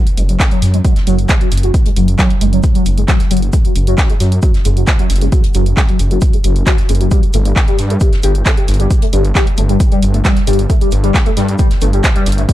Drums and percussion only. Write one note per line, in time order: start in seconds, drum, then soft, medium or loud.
0.07 closed hi-hat medium
0.17 open hi-hat loud
0.17 shaker medium
0.29 closed hi-hat medium
0.40 kick loud
0.40 snare loud
0.40 clap loud
0.40 shaker medium
0.51 closed hi-hat medium
0.62 snare soft
0.62 open hi-hat loud
0.62 shaker medium
0.74 closed hi-hat medium
0.85 kick loud
0.85 closed hi-hat medium
0.85 shaker medium
0.96 snare soft
0.96 closed hi-hat medium
1.07 open hi-hat loud
1.07 shaker medium
1.19 closed hi-hat medium
1.29 kick loud
1.29 snare loud
1.29 clap loud
1.29 closed hi-hat medium
1.29 shaker medium
1.41 closed hi-hat medium
1.51 snare soft
1.51 open hi-hat loud
1.51 shaker medium
1.57 closed hi-hat medium
1.63 closed hi-hat medium
1.74 kick loud
1.74 closed hi-hat medium
1.74 shaker medium
1.86 closed hi-hat medium
1.86 closed hi-hat soft
1.96 open hi-hat loud
1.96 shaker medium
2.08 closed hi-hat medium
2.19 kick loud
2.19 snare loud
2.19 clap loud
2.19 closed hi-hat soft
2.19 shaker medium
2.30 open hi-hat medium
2.41 open hi-hat loud
2.41 shaker medium
2.53 closed hi-hat medium
2.63 kick loud
2.63 closed hi-hat medium
2.63 shaker medium
2.75 closed hi-hat medium
2.86 open hi-hat loud
2.86 shaker medium
2.98 closed hi-hat medium
3.08 kick loud
3.08 snare loud
3.08 clap loud
3.08 closed hi-hat medium
3.08 shaker medium
3.20 snare soft
3.20 closed hi-hat medium
3.31 open hi-hat loud
3.31 shaker medium
3.37 closed hi-hat medium
3.42 closed hi-hat medium
3.53 kick loud
3.53 closed hi-hat medium
3.53 shaker medium
3.65 closed hi-hat medium
3.76 open hi-hat loud
3.76 shaker medium
3.87 closed hi-hat medium
3.98 kick loud
3.98 snare loud
3.98 clap loud
3.98 shaker medium
4.10 closed hi-hat medium
4.20 snare soft
4.20 open hi-hat loud
4.20 shaker medium
4.32 closed hi-hat medium
4.42 kick loud
4.42 closed hi-hat medium
4.42 shaker medium
4.54 snare soft
4.54 closed hi-hat medium
4.65 open hi-hat loud
4.65 shaker medium
4.77 closed hi-hat medium
4.87 kick loud
4.87 snare loud
4.87 clap loud
4.87 closed hi-hat medium
4.87 shaker medium
4.99 closed hi-hat medium
5.10 snare soft
5.10 open hi-hat loud
5.10 shaker medium
5.16 closed hi-hat medium
5.21 closed hi-hat medium
5.32 kick loud
5.32 closed hi-hat medium
5.32 shaker medium
5.44 closed hi-hat soft
5.44 closed hi-hat medium
5.54 open hi-hat loud
5.54 shaker medium
5.66 closed hi-hat medium
5.76 kick loud
5.76 snare loud
5.76 clap loud
5.76 closed hi-hat soft
5.76 shaker medium
5.89 open hi-hat medium
5.99 open hi-hat loud
5.99 shaker medium
6.11 closed hi-hat medium
6.21 kick loud
6.21 closed hi-hat medium
6.21 shaker medium
6.33 closed hi-hat medium
6.44 open hi-hat loud
6.44 shaker medium
6.56 closed hi-hat medium
6.67 kick loud
6.67 snare loud
6.67 clap loud
6.67 closed hi-hat medium
6.67 shaker medium
6.78 snare soft
6.78 closed hi-hat medium
6.89 open hi-hat loud
6.89 shaker medium
6.95 closed hi-hat medium
7.01 closed hi-hat soft
7.11 kick loud
7.11 closed hi-hat medium
7.11 shaker medium
7.23 closed hi-hat medium
7.33 open hi-hat loud
7.33 shaker medium
7.45 closed hi-hat medium
7.56 kick loud
7.56 snare loud
7.56 clap loud
7.56 shaker medium
7.68 closed hi-hat soft
7.78 snare soft
7.78 open hi-hat loud
7.78 shaker medium
7.90 closed hi-hat medium
8.00 kick loud
8.00 closed hi-hat medium
8.00 shaker medium
8.12 snare soft
8.12 closed hi-hat medium
8.23 open hi-hat loud
8.23 shaker medium
8.35 closed hi-hat medium
8.46 kick loud
8.46 snare loud
8.46 clap loud
8.46 closed hi-hat medium
8.46 shaker medium
8.57 closed hi-hat soft
8.68 snare soft
8.68 open hi-hat loud
8.68 shaker medium
8.74 closed hi-hat medium
8.80 closed hi-hat soft
8.91 kick loud
8.91 closed hi-hat medium
8.91 shaker medium
9.02 closed hi-hat soft
9.13 open hi-hat loud
9.13 shaker medium
9.25 closed hi-hat soft
9.35 kick loud
9.35 snare loud
9.35 clap loud
9.35 closed hi-hat soft
9.35 shaker medium
9.47 open hi-hat medium
9.57 open hi-hat loud
9.57 shaker medium
9.69 closed hi-hat medium
9.80 kick loud
9.80 closed hi-hat medium
9.80 shaker medium
9.92 closed hi-hat medium
10.02 open hi-hat loud
10.02 shaker medium
10.14 closed hi-hat soft
10.25 kick loud
10.25 snare loud
10.25 clap loud
10.25 closed hi-hat medium
10.25 shaker medium
10.36 snare soft
10.36 closed hi-hat soft
10.47 open hi-hat loud
10.47 shaker medium
10.53 closed hi-hat medium
10.59 closed hi-hat soft
10.70 kick loud
10.70 closed hi-hat medium
10.70 shaker medium
10.81 closed hi-hat medium
10.91 open hi-hat loud
10.91 shaker medium
11.04 closed hi-hat soft
11.14 kick loud
11.14 snare loud
11.14 clap loud
11.14 shaker medium
11.26 closed hi-hat soft
11.37 snare soft
11.37 open hi-hat medium
11.37 shaker medium
11.48 closed hi-hat medium
11.59 kick loud
11.59 closed hi-hat medium
11.59 shaker medium
11.70 snare soft
11.70 closed hi-hat soft
11.81 open hi-hat loud
11.81 shaker medium
11.93 closed hi-hat medium
12.04 kick loud
12.04 snare loud
12.04 clap loud
12.04 closed hi-hat medium
12.04 shaker medium
12.16 closed hi-hat medium
12.26 snare soft
12.26 open hi-hat loud
12.26 shaker medium
12.32 closed hi-hat medium
12.38 closed hi-hat medium
12.49 kick loud
12.49 closed hi-hat medium
12.49 shaker medium